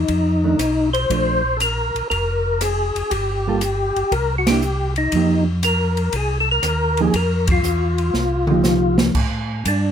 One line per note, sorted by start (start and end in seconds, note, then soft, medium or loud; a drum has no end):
0.00 0.90 D#4 medium
0.08 0.55 F2 medium
0.08 kick soft
0.08 ride soft
0.44 0.58 D#3 medium
0.44 0.58 A3 medium
0.44 0.58 D4 medium
0.59 1.06 B1 medium
0.59 cross-stick medium
0.59 hi-hat pedal medium
0.59 ride medium
0.93 1.57 C5 loud
0.93 ride soft
1.10 1.91 A#1 medium
1.10 1.41 F3 soft
1.10 1.41 A3 medium
1.10 1.42 D4 medium
1.10 kick soft
1.10 ride medium
1.57 1.60 A4 medium
1.57 hi-hat pedal soft
1.57 ride medium
1.62 2.08 A#4 medium
1.95 2.02 A#1 soft
1.95 ride soft
2.10 2.92 F1 medium
2.10 2.62 A#4 medium
2.10 kick soft
2.10 ride soft
2.61 3.13 G#4 medium
2.61 cross-stick medium
2.61 hi-hat pedal soft
2.61 ride medium
2.95 3.03 F1 soft
2.95 ride soft
3.10 3.92 G1 medium
3.10 4.14 G4 medium
3.10 kick soft
3.10 ride medium
3.47 3.61 G3 medium
3.47 3.61 A#3 medium
3.47 3.61 F4 medium
3.47 3.61 A4 medium
3.61 hi-hat pedal soft
3.61 ride medium
3.96 4.04 G1 soft
3.96 ride soft
4.11 5.08 C2 medium
4.11 4.35 A#4 medium
4.11 kick soft
4.11 ride soft
4.38 4.47 F#4 medium
4.47 4.62 A#3 soft
4.47 4.62 D4 medium
4.47 4.63 E4 medium
4.47 4.94 G4 medium
4.47 snare medium
4.47 ride medium
4.62 hi-hat pedal soft
4.96 5.44 D#4 medium
4.96 ride soft
5.12 6.09 F2 medium
5.12 5.45 F3 soft
5.12 5.45 A#3 soft
5.12 kick soft
5.12 ride medium
5.16 5.46 D#4 medium
5.16 5.46 G4 medium
5.63 6.16 A#4 medium
5.63 hi-hat pedal medium
5.63 ride medium
5.97 ride soft
6.13 6.60 C2 medium
6.13 6.38 G#4 medium
6.13 kick soft
6.13 ride medium
6.40 6.49 A4 medium
6.51 7.02 A#4 medium
6.63 7.10 D#2 medium
6.63 cross-stick medium
6.63 hi-hat pedal soft
6.63 ride medium
6.97 7.13 F3 medium
6.97 7.14 A#3 medium
6.97 7.14 D#4 medium
6.97 7.14 G4 medium
6.97 7.16 G#4 medium
6.97 ride soft
7.13 7.60 F2 medium
7.13 7.47 A#4 medium
7.13 kick soft
7.13 ride medium
7.47 8.97 F4 medium
7.47 kick medium
7.47 ride medium
7.63 8.10 E2 medium
7.63 hi-hat pedal medium
7.98 ride soft
8.14 9.11 C2 medium
8.14 snare soft
8.47 9.13 F3 medium
8.47 9.13 A#3 soft
8.47 9.13 D#4 medium
8.47 9.13 G4 medium
8.47 mid tom medium
8.64 snare medium
8.64 hi-hat pedal medium
8.98 snare medium
9.15 9.64 A2 medium
9.15 kick medium
9.15 crash medium
9.65 9.92 G2 medium
9.65 9.92 D4 medium
9.65 kick soft
9.65 hi-hat pedal soft
9.65 ride medium